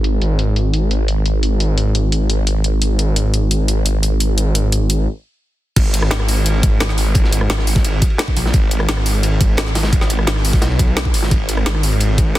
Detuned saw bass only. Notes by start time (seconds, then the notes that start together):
Already playing: G#1
0.21 G#1
5.76 G#1
6.11 G#1
7.50 G#1
7.85 G#1
8.37 A#1
8.54 G#1
8.88 G#1
10.27 G#1
10.62 B1
11.14 G#1
11.31 G#1
11.66 G#1